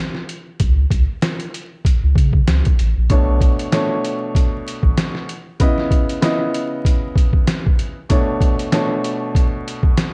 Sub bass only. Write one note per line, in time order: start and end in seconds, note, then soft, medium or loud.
0.60 0.85 C#2 loud
0.91 1.05 C#2 medium
2.03 2.14 C#2 medium
2.16 2.41 C#3 loud
2.48 2.62 C#2 loud
2.80 2.93 A1 medium
2.97 3.08 A#1 medium
3.10 3.49 B1 loud
4.83 4.95 A1 medium